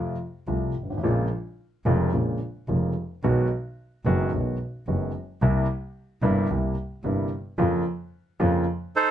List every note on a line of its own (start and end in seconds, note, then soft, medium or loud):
0.00 0.15 F2 medium
0.00 0.15 C3 soft
0.00 0.15 F3 medium
0.00 0.15 A3 soft
0.00 0.15 F4 soft
0.47 0.71 C2 medium
0.47 0.71 C3 soft
0.47 0.71 F3 soft
0.47 0.71 A3 soft
0.47 0.71 F4 medium
0.76 1.03 G#1 medium
0.83 0.90 G1 soft
0.90 0.97 G#1 medium
0.97 1.04 A1 medium
1.03 1.27 A#1 medium
1.03 1.27 A#2 medium
1.03 1.26 C#3 medium
1.03 1.27 G#3 medium
1.03 1.27 A#3 medium
1.03 1.27 F4 medium
1.86 2.09 F1 medium
1.86 2.09 F2 medium
1.86 2.09 C#3 medium
1.86 2.09 G#3 medium
1.86 2.09 A#3 medium
1.86 2.09 F4 medium
2.13 2.36 A#1 medium
2.13 2.37 A#1 medium
2.13 2.37 A#2 medium
2.13 2.37 C#3 soft
2.13 2.37 G#3 soft
2.13 2.37 A#3 soft
2.13 2.37 F4 medium
2.68 2.92 F1 medium
2.68 2.92 F2 medium
2.68 2.92 C#3 soft
2.68 2.92 G#3 soft
2.68 2.92 A#3 soft
2.68 2.92 F4 medium
3.24 3.47 B1 medium
3.24 3.47 B2 medium
3.24 3.47 D#3 medium
3.24 3.47 G#3 medium
3.24 3.47 B3 medium
3.24 3.47 F#4 medium
4.05 4.28 F#1 medium
4.05 4.29 F#1 medium
4.05 4.29 F#2 medium
4.05 4.29 D#3 medium
4.05 4.29 G#3 medium
4.05 4.29 B3 medium
4.05 4.29 F#4 medium
4.33 4.56 B1 medium
4.33 4.56 B1 soft
4.33 4.56 B2 medium
4.33 4.56 D#3 soft
4.33 4.56 G#3 soft
4.33 4.56 B3 soft
4.87 5.10 F#1 medium
4.87 5.11 F#1 medium
4.87 5.11 F#2 medium
4.87 5.11 D#3 soft
4.87 5.11 G#3 soft
4.87 5.11 B3 soft
4.87 5.11 F#4 medium
5.42 5.65 C2 medium
5.42 5.65 C3 medium
5.42 5.65 G3 medium
5.42 5.65 A#3 medium
5.42 5.65 E4 medium
6.22 6.46 G1 medium
6.22 6.46 G2 medium
6.22 6.45 C3 medium
6.22 6.46 G3 medium
6.22 6.46 A#3 medium
6.22 6.46 E4 medium
6.49 6.73 C2 medium
6.49 6.73 C3 medium
6.49 6.73 G3 soft
6.49 6.74 A#3 soft
6.49 6.74 E4 medium
7.04 7.27 G1 medium
7.04 7.27 G2 medium
7.04 7.27 C3 medium
7.04 7.27 G3 soft
7.04 7.27 A#3 soft
7.04 7.28 E4 medium
7.58 7.81 F2 medium
7.58 7.81 C#3 medium
7.58 7.81 F3 medium
7.58 7.82 A#3 medium
7.58 7.82 F4 medium
8.40 8.63 F2 medium
8.40 8.64 F2 medium
8.40 8.63 C#3 medium
8.40 8.63 F3 medium
8.40 8.63 A#3 medium
8.40 8.63 F4 medium
8.96 9.11 D#4 medium
8.96 9.11 A4 medium
8.96 9.11 C5 medium